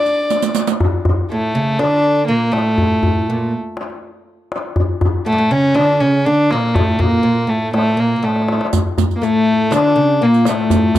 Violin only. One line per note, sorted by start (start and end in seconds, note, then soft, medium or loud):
0.00 0.56 D5 medium
1.31 1.81 A3 medium
1.79 2.27 D4 loud
2.28 2.54 A#3 medium
2.53 3.52 A3 medium
5.27 5.53 A3 medium
5.52 5.77 C#4 medium
5.75 6.01 D4 loud
6.00 6.27 C#4 medium
6.25 6.53 D4 medium
6.51 6.76 A#3 medium
6.74 7.02 A3 medium
7.01 7.51 A#3 medium
7.49 7.74 A3 medium
7.74 8.01 A3 medium
8.00 8.26 A#3 medium
8.24 8.61 A3 medium
9.16 9.25 A#3 medium
9.23 9.75 A3 medium
9.74 10.24 D4 medium
10.23 10.50 A#3 medium
10.48 10.99 A3 medium